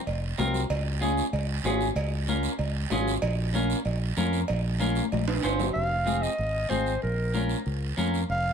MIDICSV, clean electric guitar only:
0, 0, Header, 1, 2, 480
1, 0, Start_track
1, 0, Tempo, 316289
1, 1062, Time_signature, 4, 2, 24, 8
1, 12948, End_track
2, 0, Start_track
2, 0, Title_t, "Clean electric guitar"
2, 0, Program_c, 0, 27
2, 578, Note_on_c, 0, 60, 83
2, 587, Note_on_c, 0, 65, 57
2, 590, Note_on_c, 0, 70, 85
2, 917, Note_off_c, 0, 60, 0
2, 919, Note_off_c, 0, 65, 0
2, 922, Note_off_c, 0, 70, 0
2, 1530, Note_on_c, 0, 65, 74
2, 1536, Note_on_c, 0, 61, 74
2, 1543, Note_on_c, 0, 68, 84
2, 1871, Note_off_c, 0, 65, 0
2, 1874, Note_off_c, 0, 61, 0
2, 1878, Note_off_c, 0, 68, 0
2, 2501, Note_on_c, 0, 61, 79
2, 2512, Note_on_c, 0, 65, 75
2, 2516, Note_on_c, 0, 68, 78
2, 2839, Note_off_c, 0, 61, 0
2, 2839, Note_off_c, 0, 68, 0
2, 2840, Note_off_c, 0, 65, 0
2, 3464, Note_on_c, 0, 61, 72
2, 3472, Note_on_c, 0, 70, 79
2, 3473, Note_on_c, 0, 65, 56
2, 3797, Note_off_c, 0, 61, 0
2, 3799, Note_off_c, 0, 65, 0
2, 3801, Note_off_c, 0, 70, 0
2, 4421, Note_on_c, 0, 61, 82
2, 4428, Note_on_c, 0, 65, 79
2, 4440, Note_on_c, 0, 68, 79
2, 4755, Note_off_c, 0, 61, 0
2, 4759, Note_off_c, 0, 65, 0
2, 4761, Note_off_c, 0, 68, 0
2, 5365, Note_on_c, 0, 61, 75
2, 5376, Note_on_c, 0, 65, 57
2, 5388, Note_on_c, 0, 70, 81
2, 5707, Note_off_c, 0, 61, 0
2, 5710, Note_off_c, 0, 65, 0
2, 5718, Note_off_c, 0, 70, 0
2, 6330, Note_on_c, 0, 61, 77
2, 6337, Note_on_c, 0, 65, 65
2, 6339, Note_on_c, 0, 70, 93
2, 6669, Note_off_c, 0, 61, 0
2, 6670, Note_off_c, 0, 65, 0
2, 6673, Note_off_c, 0, 70, 0
2, 7275, Note_on_c, 0, 61, 77
2, 7282, Note_on_c, 0, 65, 75
2, 7291, Note_on_c, 0, 70, 76
2, 7621, Note_off_c, 0, 61, 0
2, 7626, Note_off_c, 0, 65, 0
2, 7627, Note_off_c, 0, 70, 0
2, 8237, Note_on_c, 0, 61, 84
2, 8246, Note_on_c, 0, 65, 67
2, 8257, Note_on_c, 0, 72, 93
2, 8584, Note_off_c, 0, 61, 0
2, 8584, Note_off_c, 0, 65, 0
2, 8592, Note_off_c, 0, 72, 0
2, 9190, Note_on_c, 0, 60, 58
2, 9196, Note_on_c, 0, 65, 59
2, 9206, Note_on_c, 0, 68, 69
2, 9539, Note_off_c, 0, 60, 0
2, 9542, Note_off_c, 0, 65, 0
2, 9547, Note_off_c, 0, 68, 0
2, 10150, Note_on_c, 0, 60, 70
2, 10159, Note_on_c, 0, 65, 50
2, 10162, Note_on_c, 0, 68, 68
2, 10501, Note_off_c, 0, 60, 0
2, 10502, Note_off_c, 0, 65, 0
2, 10506, Note_off_c, 0, 68, 0
2, 11137, Note_on_c, 0, 61, 61
2, 11144, Note_on_c, 0, 65, 54
2, 11146, Note_on_c, 0, 70, 67
2, 11474, Note_off_c, 0, 65, 0
2, 11475, Note_off_c, 0, 61, 0
2, 11479, Note_off_c, 0, 70, 0
2, 12096, Note_on_c, 0, 61, 80
2, 12104, Note_on_c, 0, 65, 71
2, 12114, Note_on_c, 0, 70, 87
2, 12434, Note_off_c, 0, 61, 0
2, 12439, Note_off_c, 0, 65, 0
2, 12442, Note_off_c, 0, 70, 0
2, 12948, End_track
0, 0, End_of_file